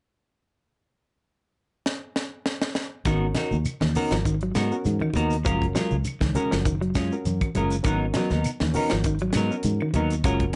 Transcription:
1.86 snare
2.16 snare
2.46 snare
2.62 snare
2.75 snare
3.05 fingered electric bass G#1, clean electric guitar D#3 B3 D#4 F#4 A#4, reed electric piano C#4 F#4 A#4, kick, snare, closed hi-hat, high conga, claves, shekere
3.35 clean electric guitar D#4 F#4 A#4, snare, closed hi-hat, high conga, shekere
3.51 fingered electric bass D#2, low conga, shekere
3.65 closed hi-hat, high conga, claves, shekere
3.81 fingered electric bass D#2, clean electric guitar D#3, snare, high conga
3.95 clean electric guitar B3 D#4 F#4 A#4, reed electric piano C#4 F#4 A#4, muted fingered electric bass stroke, open hi-hat, low conga, shekere
4.11 fingered electric bass G#1, clean electric guitar F3, snare, closed hi-hat, claves, shekere
4.25 clean electric guitar D#3, kick, closed hi-hat, shekere
4.41 clean electric guitar F#3, closed hi-hat
4.55 fingered electric bass G#2, clean electric guitar B3 D#4 F#4 A#4, snare, closed hi-hat, claves, shekere
4.72 reed electric piano C#4 F#4 A#4, shekere
4.85 fingered electric bass G#2, closed hi-hat, high conga, shekere
5.00 clean electric guitar D#3, high conga, claves
5.14 fingered electric bass D#2, clean electric guitar B3 D#4 F#4 A#4, closed hi-hat, high conga, low conga, shekere
5.30 closed hi-hat, shekere
5.45 fingered electric bass F#1, clean electric guitar F3 G#3 C#4 F4 A#4, reed electric piano C#4 F#4 A#4, kick, closed hi-hat, claves, shekere
5.62 kick, closed hi-hat
5.75 clean electric guitar F#3 G#3 C#4 F4 A#4, snare, closed hi-hat, high conga, shekere
5.91 fingered electric bass C#2, low conga, shekere
6.05 closed hi-hat, high conga, claves, shekere
6.21 fingered electric bass C#2, clean electric guitar D#3, kick, snare, high conga
6.35 clean electric guitar G#3 C#4 A#4, reed electric piano C#4 F#4 A#4, muted clean electric guitar stroke, muted fingered electric bass stroke, closed hi-hat, low conga, shekere
6.51 fingered electric bass F#1, clean electric guitar F3, snare, closed hi-hat, claves, shekere
6.65 clean electric guitar D#3, kick, closed hi-hat, shekere
6.81 clean electric guitar F#3, closed hi-hat
6.95 fingered electric bass F#2, clean electric guitar G#3 C#4 F4, muted clean electric guitar stroke, kick, snare, closed hi-hat, claves, shekere
7.12 reed electric piano C#4 F#4 A#4, shekere
7.25 fingered electric bass F#2, closed hi-hat, high conga, shekere
7.41 kick, closed hi-hat, high conga, claves
7.55 fingered electric bass F#1, clean electric guitar G#3 C#4 F4 A#4, closed hi-hat, high conga, low conga, shekere
7.70 closed hi-hat, shekere
7.83 fingered electric bass G#1, clean electric guitar D#3 F#3 B3 D#4 A#4, reed electric piano C#4 F#4 A#4, kick, closed hi-hat, high conga, claves, shekere
8.14 clean electric guitar F#3 B3 D#4 A#4, snare, closed hi-hat, high conga, shekere
8.30 fingered electric bass D#2, clean electric guitar B3 D#4 A#4, snare, low conga, shekere
8.44 closed hi-hat, high conga, claves, shekere
8.60 fingered electric bass D#2, clean electric guitar D#3, snare, high conga
8.74 clean electric guitar B3 D#4 A#4, reed electric piano C#4 F#4 A#4, muted fingered electric bass stroke, open hi-hat, low conga, shekere
8.90 fingered electric bass G#1, clean electric guitar F3, snare, closed hi-hat, claves, shekere
9.04 clean electric guitar D#3, kick, closed hi-hat, shekere
9.19 clean electric guitar F#3, closed hi-hat
9.33 fingered electric bass G#2, clean electric guitar F#3 B3, snare, closed hi-hat, claves, shekere
9.37 clean electric guitar D#4 A#4
9.51 reed electric piano C#4 F#4 A#4, shekere
9.63 fingered electric bass G#2, closed hi-hat, high conga, shekere
9.81 clean electric guitar D#3, claves
9.94 fingered electric bass D#2, clean electric guitar F#3 B3 D#4 A#4, closed hi-hat, high conga, low conga, shekere
10.10 closed hi-hat, shekere
10.24 fingered electric bass F#1, clean electric guitar G#3 C#4 F4 A#4, reed electric piano C#4 F#4 A#4, muted clean electric guitar stroke, kick, closed hi-hat, high conga, claves, shekere
10.40 kick, closed hi-hat

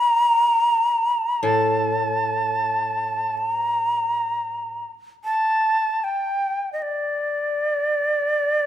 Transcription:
Already playing: shakuhachi A#5
1.43 koto A2, shakuhachi A5
3.37 shakuhachi A5
3.50 shakuhachi A#5
5.25 shakuhachi A5
6.04 shakuhachi G5
6.73 shakuhachi D#5
6.82 shakuhachi D5

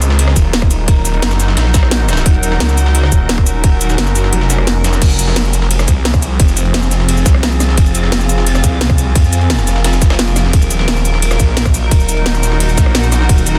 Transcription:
Already playing: detuned saw bass C#2, synth drone F#3 D#4 A#4, ambient pad C4 D#4 F#4 G#4 A#4
0.02 closed hi-hat, ride, shaker
0.10 snare
0.19 ambient pad F#5, closed hi-hat, ride
0.28 cross-stick, snare
0.36 detuned saw bass D#1, kick, closed hi-hat, ride, shaker
0.53 snare, closed hi-hat, ride
0.62 kick, cross-stick
0.71 closed hi-hat, ride, shaker
0.88 kick, closed hi-hat, ride
1.05 closed hi-hat, ride, shaker
1.14 ride
1.22 detuned saw bass F#1, snare, closed hi-hat, ride
1.31 snare, shaker
1.40 snare, closed hi-hat, ride, shaker
1.48 snare
1.57 detuned saw bass A#1, snare, closed hi-hat, ride
1.66 snare
1.74 kick, snare, closed hi-hat, ride, shaker
1.83 cross-stick, snare
1.91 snare, closed hi-hat, ride
2.00 snare
2.09 cross-stick, snare, closed hi-hat, ride, shaker
2.13 snare, ride
2.17 snare, ride, shaker
2.26 detuned saw bass D#1, synth drone C#4, kick, closed hi-hat, ride
2.34 ride
2.43 closed hi-hat, ride, shaker
2.52 snare
2.60 detuned saw bass C#2, snare, closed hi-hat, ride
2.69 snare, shaker
2.77 closed hi-hat, ride, shaker
2.86 snare
2.95 closed hi-hat, ride
3.03 cross-stick, snare
3.12 detuned saw bass D#1, kick, closed hi-hat, shaker
3.29 snare, closed hi-hat, ride
3.38 kick, cross-stick
3.46 closed hi-hat, ride, shaker
3.64 kick, closed hi-hat, ride
3.81 closed hi-hat, ride, shaker
3.90 snare, shaker
3.98 detuned saw bass F#1, snare, closed hi-hat, ride
4.07 snare, shaker
4.15 snare, closed hi-hat, ride, shaker
4.24 snare
4.33 detuned saw bass F1, closed hi-hat, ride
4.41 snare
4.50 snare, closed hi-hat, ride, shaker
4.58 cross-stick
4.67 snare, closed hi-hat
4.84 detuned saw bass F1, cross-stick, snare, closed hi-hat, ride, shaker
4.93 snare, shaker
5.02 detuned saw bass F1, synth drone F3 C4 G#4, ambient pad C4, kick, closed hi-hat, ride, crash
5.10 ride, shaker
5.19 ambient pad F4, closed hi-hat, ride, shaker
5.28 snare
5.36 snare, closed hi-hat, ride
5.45 snare, shaker
5.53 closed hi-hat, ride, shaker
5.59 ambient pad G#4, snare
5.71 closed hi-hat, ride
5.79 cross-stick, snare, shaker
5.88 detuned saw bass C2, kick, closed hi-hat, ride, shaker
6.01 ambient pad F5, snare, closed hi-hat, ride
6.14 kick, cross-stick, shaker
6.22 closed hi-hat, ride, shaker
6.40 detuned saw bass F1, kick, closed hi-hat, ride
6.48 shaker
6.57 closed hi-hat, ride, shaker
6.65 ride
6.74 snare, closed hi-hat, ride
6.83 snare, shaker
6.91 snare, closed hi-hat, ride, shaker
7.00 snare
7.09 closed hi-hat, ride
7.17 shaker
7.26 detuned saw bass C2, kick, snare, closed hi-hat, ride, shaker
7.34 cross-stick
7.43 snare, closed hi-hat, ride
7.52 shaker
7.60 cross-stick, snare, closed hi-hat, ride, shaker
7.69 snare
7.77 detuned saw bass F1, kick, closed hi-hat, ride
7.86 ride, shaker
7.95 closed hi-hat, ride, shaker
8.03 snare
8.12 ambient pad A#4, snare, closed hi-hat, ride
8.21 snare, shaker
8.29 closed hi-hat, ride, shaker
8.38 snare
8.47 closed hi-hat, ride
8.55 cross-stick, snare, shaker
8.64 detuned saw bass C2, kick, closed hi-hat, ride, shaker
8.81 snare, closed hi-hat, ride
8.90 kick, cross-stick, shaker
8.98 closed hi-hat, ride, shaker
9.15 detuned saw bass F2, kick, closed hi-hat, ride
9.24 shaker
9.33 closed hi-hat, ride, shaker
9.41 ride
9.50 snare, closed hi-hat, ride
9.59 snare, shaker
9.67 detuned saw bass F1, snare, closed hi-hat, ride, shaker
9.76 snare
9.84 snare, closed hi-hat, ride
9.93 snare, shaker
10.02 kick, snare, closed hi-hat, ride, shaker
10.10 cross-stick, snare, ride
10.19 snare, closed hi-hat, ride
10.27 snare, ride, shaker
10.36 cross-stick, snare, closed hi-hat, ride, shaker
10.45 snare
10.53 detuned saw bass D#1, synth drone F#3 D#4 A#4, ambient pad D#4, kick, closed hi-hat, ride
10.62 ambient pad F#4, ride, shaker
10.71 closed hi-hat, ride, shaker
10.79 snare
10.88 snare, closed hi-hat, ride
10.96 snare, shaker
11.05 closed hi-hat, ride, shaker
11.14 snare
11.22 closed hi-hat, ride
11.30 ambient pad F#5, cross-stick, snare, shaker
11.39 detuned saw bass A#1, kick, closed hi-hat, ride, shaker
11.57 snare, closed hi-hat, ride
11.65 kick, cross-stick, shaker
11.74 closed hi-hat, ride, shaker
11.91 detuned saw bass D#1, kick, closed hi-hat, ride
12.00 shaker
12.09 closed hi-hat, ride, shaker
12.17 ride
12.26 snare, closed hi-hat, ride
12.34 snare, shaker
12.43 snare, closed hi-hat, ride, shaker
12.52 snare
12.60 closed hi-hat, ride
12.69 shaker
12.78 detuned saw bass A#1, kick, snare, closed hi-hat, ride, shaker
12.86 cross-stick
12.95 snare, closed hi-hat, ride
13.03 shaker
13.12 cross-stick, snare, closed hi-hat, ride, shaker
13.21 snare
13.29 detuned saw bass D#1, kick, closed hi-hat, ride
13.38 ride, shaker
13.47 closed hi-hat, ride, shaker
13.55 snare

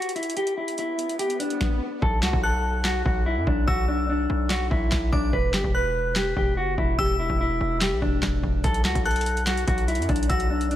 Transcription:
Already playing: clean electric guitar F#4
0.02 closed hi-hat
0.09 closed hi-hat
0.16 clean electric guitar E4, closed hi-hat
0.23 closed hi-hat
0.30 closed hi-hat
0.37 clean electric guitar G4, closed hi-hat, swell
0.47 closed hi-hat
0.57 clean electric guitar E4
0.68 closed hi-hat
0.78 clean electric guitar E4, closed hi-hat
0.99 closed hi-hat
1.09 closed hi-hat
1.19 clean electric guitar G4, closed hi-hat
1.30 closed hi-hat
1.40 clean electric guitar D4, closed hi-hat
1.50 closed hi-hat
1.61 kick, snare
2.02 808-style bass B1, clean electric guitar A4, kick
2.22 808-style bass C#2, clean electric guitar F#4, snare, clap
2.33 808-style bass B1, kick
2.43 clean electric guitar A4, synth bell F#6
2.84 clean electric guitar F#4, snare, clap
3.05 808-style bass B1, clean electric guitar F#4, kick
3.26 clean electric guitar E4
3.37 808-style bass F#2
3.47 808-style bass B1, clean electric guitar D4, kick
3.67 808-style bass B1, clean electric guitar F#4, synth bell E6, kick
3.88 clean electric guitar D4
4.09 clean electric guitar D4
4.30 808-style bass B1
4.49 clean electric guitar F#4, snare, clap
4.70 808-style bass B1, clean electric guitar E4, kick
4.91 808-style bass B1, kick, snare, clap
5.12 808-style bass B1, clean electric guitar D4, synth bell D6, kick
5.33 808-style bass E1, clean electric guitar B4, kick
5.54 808-style bass G1, clean electric guitar G4, snare, clap
5.64 808-style bass E1, kick
5.74 clean electric guitar B4, synth bell F#6
6.16 clean electric guitar G4, snare, clap
6.37 808-style bass E1, clean electric guitar G4, kick
6.57 808-style bass F#1, clean electric guitar F#4
6.78 808-style bass E1, clean electric guitar E4, kick
6.99 808-style bass E1, clean electric guitar G4, synth bell E6, kick
7.20 clean electric guitar E4
7.30 808-style bass E1, kick
7.41 clean electric guitar E4
7.61 808-style bass E1
7.81 clean electric guitar G4, snare, clap
7.92 808-style bass B1
8.02 808-style bass E1, clean electric guitar D4, kick
8.22 808-style bass E1, kick, snare, clap
8.44 808-style bass E1, kick
8.64 808-style bass B1, clean electric guitar A4, kick, closed hi-hat
8.74 closed hi-hat
8.85 808-style bass C#2, clean electric guitar F#4, snare, clap
8.95 808-style bass B1, kick, closed hi-hat
9.05 clean electric guitar A4, synth bell F#6, closed hi-hat
9.11 closed hi-hat
9.16 closed hi-hat
9.21 closed hi-hat
9.26 closed hi-hat
9.37 closed hi-hat
9.46 clean electric guitar F#4, snare, clap, closed hi-hat
9.57 closed hi-hat
9.67 808-style bass B1, clean electric guitar F#4, kick, closed hi-hat
9.78 closed hi-hat
9.88 clean electric guitar E4, closed hi-hat
9.95 808-style bass F#2, closed hi-hat
10.02 closed hi-hat
10.09 808-style bass B1, clean electric guitar D4, kick, closed hi-hat
10.16 closed hi-hat
10.23 closed hi-hat
10.29 808-style bass B1, clean electric guitar F#4, synth bell E6, kick, closed hi-hat
10.40 closed hi-hat
10.50 clean electric guitar D4
10.61 closed hi-hat
10.71 clean electric guitar D4, closed hi-hat

